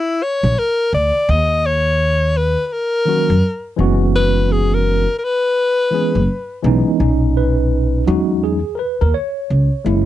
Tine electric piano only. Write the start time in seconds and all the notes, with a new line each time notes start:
3.05 D#3 F#3 A#3 C#4 F#4
3.76 E3 G#3 B3 C#4 F#4
5.91 E3 G#3 B3 C#4 G#4
6.63 E3 G#3 B3 C#4 D#4
6.99 A#2 C#4 D#4
7.37 B4
8.06 F#3 G#3 C#4 D#4 F#4
8.44 G#4
8.75 A#4 B4
9.01 A#4
9.14 C#5
9.85 G#3 A#3 E4